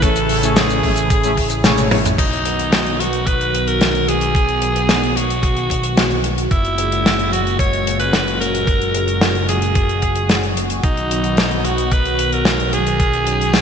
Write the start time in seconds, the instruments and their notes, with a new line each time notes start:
Already playing: analog synth bass A1, analog synth pad C#3 E3 A3 E4
0.02 analog polysynth A3 C#4 E4 G#4 C#5, alto saxophone A4, kick, closed hi-hat, shaker
0.16 closed hi-hat, shaker
0.29 open hi-hat
0.43 analog polysynth A3 C#4 E4 G#4 C#5, closed hi-hat, shaker
0.56 alto saxophone G#4, snare, closed hi-hat, shaker
0.69 closed hi-hat, shaker
0.83 analog polysynth A3 C#4 E4 G#4 C#5, kick, open hi-hat
0.96 closed hi-hat, shaker
1.10 kick, closed hi-hat, shaker
1.23 analog polysynth A3 C#4 E4 G#4 E5, closed hi-hat, shaker
1.37 kick, open hi-hat
1.50 closed hi-hat, shaker
1.64 analog polysynth A3 C#4 E4 G#4 C#5, snare, closed hi-hat, high tom, shaker
1.78 closed hi-hat, high tom, shaker
1.91 analog polysynth A3 C#4 E4 G#4 C#5, open hi-hat, mid tom
2.05 closed hi-hat, mid tom, shaker
2.18 analog synth bass B1, analog synth pad D#3 F#3 B3 F#4, alto saxophone D#4, kick, closed hi-hat, crash
2.33 closed hi-hat
2.45 closed hi-hat
2.59 closed hi-hat
2.72 snare, closed hi-hat
2.86 closed hi-hat
3.00 alto saxophone F#4, closed hi-hat
3.13 closed hi-hat
3.27 alto saxophone B4, kick, closed hi-hat
3.41 closed hi-hat
3.55 closed hi-hat
3.68 alto saxophone A#4, closed hi-hat
3.81 snare, closed hi-hat
3.95 closed hi-hat
4.08 alto saxophone G#4, closed hi-hat
4.21 closed hi-hat
4.35 kick, closed hi-hat
4.49 closed hi-hat
4.62 closed hi-hat
4.76 closed hi-hat
4.89 snare, closed hi-hat
5.04 closed hi-hat
5.17 alto saxophone F#4, closed hi-hat
5.30 closed hi-hat
5.43 kick, closed hi-hat
5.57 closed hi-hat
5.70 kick, closed hi-hat
5.83 closed hi-hat
5.97 snare, closed hi-hat
6.11 closed hi-hat
6.24 closed hi-hat
6.38 closed hi-hat
6.51 analog synth bass F#1, analog synth pad A#2 C#3 G#3, alto saxophone E4, kick, closed hi-hat
6.65 closed hi-hat
6.78 closed hi-hat
6.92 closed hi-hat
7.06 snare, closed hi-hat
7.19 closed hi-hat
7.32 alto saxophone F#4, closed hi-hat
7.47 closed hi-hat
7.59 alto saxophone C#5, kick, closed hi-hat
7.73 closed hi-hat
7.87 closed hi-hat
8.00 alto saxophone B4, closed hi-hat
8.13 snare, closed hi-hat
8.28 closed hi-hat
8.40 alto saxophone A#4, closed hi-hat
8.55 closed hi-hat
8.67 kick, closed hi-hat
8.81 closed hi-hat
8.95 closed hi-hat
9.08 closed hi-hat
9.21 snare, closed hi-hat
9.35 closed hi-hat
9.49 alto saxophone G#4, closed hi-hat
9.62 closed hi-hat
9.75 kick, closed hi-hat
9.89 closed hi-hat
10.02 kick, closed hi-hat
10.15 closed hi-hat
10.29 snare, closed hi-hat
10.43 closed hi-hat
10.57 closed hi-hat
10.70 closed hi-hat
10.83 analog synth bass B1, analog synth pad D#3 F#3 B3, alto saxophone D#4, kick, closed hi-hat
10.97 closed hi-hat
11.11 closed hi-hat
11.24 closed hi-hat
11.37 snare, closed hi-hat
11.51 closed hi-hat
11.65 alto saxophone F#4, closed hi-hat
11.78 closed hi-hat
11.91 alto saxophone B4, kick, closed hi-hat
12.05 closed hi-hat
12.19 closed hi-hat
12.32 alto saxophone A#4, closed hi-hat
12.45 snare, closed hi-hat
12.60 closed hi-hat
12.73 alto saxophone G#4, closed hi-hat
12.87 closed hi-hat
13.00 analog synth pad C#4, kick, closed hi-hat
13.13 closed hi-hat
13.27 closed hi-hat
13.41 closed hi-hat
13.53 snare, closed hi-hat